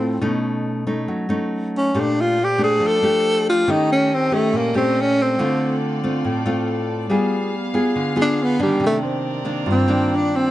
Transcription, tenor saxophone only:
0.00 0.26 C4 medium
1.77 2.02 C#4 medium
2.00 2.22 D4 medium
2.21 2.46 F4 medium
2.44 2.62 G4 medium
2.64 2.89 G#4 medium
2.87 3.48 A4 medium
3.49 3.73 F4 medium
3.71 3.90 D#4 medium
3.92 4.16 C#4 medium
4.14 4.35 C4 medium
4.34 4.59 A3 medium
4.57 4.76 A#3 medium
4.77 5.02 C4 medium
5.01 5.23 C#4 medium
5.22 5.84 C4 medium
8.22 8.45 D4 medium
8.43 8.62 B3 medium
8.63 8.81 G3 medium
8.86 8.98 A3 medium
9.71 10.17 C4 medium
10.16 10.37 D4 medium
10.36 10.51 C4 medium

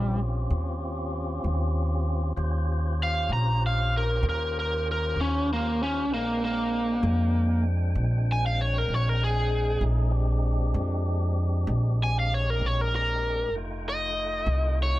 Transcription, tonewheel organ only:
0.00 2.33 C4 medium
0.00 2.33 C#4 medium
0.00 2.33 F4 medium
0.00 2.33 G4 medium
2.36 6.06 C#4 medium
2.36 6.06 F4 medium
2.36 6.06 G4 medium
2.36 6.06 C5 medium
6.10 9.79 G#3 medium
6.10 9.79 C4 medium
6.10 9.79 D4 medium
6.10 9.79 G5 medium
9.80 10.12 A3 medium
9.80 10.12 C#4 medium
9.80 10.13 D#4 medium
9.80 10.12 G#4 medium
10.11 13.50 G#3 medium
10.11 13.50 C4 medium
10.11 13.50 D4 medium
10.11 13.51 G4 medium
13.55 14.99 A3 medium
13.55 14.99 D#4 medium
13.55 14.99 F4 medium
13.55 14.99 G5 medium

